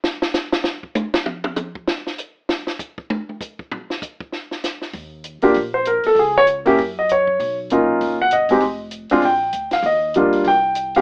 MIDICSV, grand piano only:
0, 0, Header, 1, 2, 480
1, 0, Start_track
1, 0, Tempo, 306592
1, 53, Time_signature, 4, 2, 24, 8
1, 17242, End_track
2, 0, Start_track
2, 0, Title_t, "Grand piano"
2, 0, Program_c, 0, 0
2, 8492, Note_on_c, 0, 58, 66
2, 8506, Note_on_c, 0, 62, 61
2, 8507, Note_on_c, 0, 65, 61
2, 8510, Note_on_c, 0, 67, 72
2, 8667, Note_off_c, 0, 58, 0
2, 8674, Note_off_c, 0, 62, 0
2, 8675, Note_off_c, 0, 65, 0
2, 8676, Note_off_c, 0, 67, 0
2, 8988, Note_on_c, 0, 72, 65
2, 9169, Note_off_c, 0, 72, 0
2, 9192, Note_on_c, 0, 70, 63
2, 9463, Note_off_c, 0, 70, 0
2, 9496, Note_on_c, 0, 69, 75
2, 9664, Note_off_c, 0, 69, 0
2, 9694, Note_on_c, 0, 68, 67
2, 9954, Note_off_c, 0, 68, 0
2, 9982, Note_on_c, 0, 73, 98
2, 10084, Note_off_c, 0, 73, 0
2, 10419, Note_on_c, 0, 58, 73
2, 10434, Note_on_c, 0, 64, 64
2, 10436, Note_on_c, 0, 61, 68
2, 10445, Note_on_c, 0, 67, 77
2, 10592, Note_off_c, 0, 58, 0
2, 10600, Note_off_c, 0, 64, 0
2, 10601, Note_off_c, 0, 61, 0
2, 10605, Note_off_c, 0, 67, 0
2, 10939, Note_on_c, 0, 75, 69
2, 11106, Note_off_c, 0, 75, 0
2, 11142, Note_on_c, 0, 73, 71
2, 11835, Note_off_c, 0, 73, 0
2, 12076, Note_on_c, 0, 58, 57
2, 12078, Note_on_c, 0, 61, 54
2, 12085, Note_on_c, 0, 63, 52
2, 12092, Note_on_c, 0, 65, 64
2, 12777, Note_off_c, 0, 58, 0
2, 12778, Note_off_c, 0, 61, 0
2, 12781, Note_off_c, 0, 63, 0
2, 12785, Note_off_c, 0, 65, 0
2, 12862, Note_on_c, 0, 78, 80
2, 13029, Note_off_c, 0, 78, 0
2, 13037, Note_on_c, 0, 75, 68
2, 13317, Note_on_c, 0, 56, 62
2, 13325, Note_on_c, 0, 63, 56
2, 13331, Note_on_c, 0, 60, 58
2, 13332, Note_on_c, 0, 67, 67
2, 13482, Note_off_c, 0, 56, 0
2, 13486, Note_off_c, 0, 63, 0
2, 13489, Note_off_c, 0, 60, 0
2, 13490, Note_off_c, 0, 67, 0
2, 13743, Note_off_c, 0, 75, 0
2, 14265, Note_on_c, 0, 62, 66
2, 14267, Note_on_c, 0, 60, 67
2, 14270, Note_on_c, 0, 56, 71
2, 14283, Note_on_c, 0, 65, 79
2, 14436, Note_off_c, 0, 62, 0
2, 14437, Note_off_c, 0, 60, 0
2, 14439, Note_off_c, 0, 56, 0
2, 14445, Note_off_c, 0, 65, 0
2, 14486, Note_on_c, 0, 79, 78
2, 15187, Note_off_c, 0, 79, 0
2, 15236, Note_on_c, 0, 77, 80
2, 15416, Note_off_c, 0, 77, 0
2, 15435, Note_on_c, 0, 75, 70
2, 15901, Note_on_c, 0, 55, 58
2, 15906, Note_on_c, 0, 58, 53
2, 15916, Note_on_c, 0, 62, 58
2, 15926, Note_on_c, 0, 65, 65
2, 16142, Note_off_c, 0, 75, 0
2, 16379, Note_off_c, 0, 55, 0
2, 16381, Note_off_c, 0, 58, 0
2, 16386, Note_off_c, 0, 62, 0
2, 16391, Note_off_c, 0, 65, 0
2, 16402, Note_on_c, 0, 79, 87
2, 17105, Note_off_c, 0, 79, 0
2, 17160, Note_on_c, 0, 60, 52
2, 17161, Note_on_c, 0, 56, 61
2, 17164, Note_on_c, 0, 63, 58
2, 17165, Note_on_c, 0, 77, 76
2, 17177, Note_on_c, 0, 67, 71
2, 17242, Note_off_c, 0, 56, 0
2, 17242, Note_off_c, 0, 60, 0
2, 17242, Note_off_c, 0, 63, 0
2, 17242, Note_off_c, 0, 67, 0
2, 17242, Note_off_c, 0, 77, 0
2, 17242, End_track
0, 0, End_of_file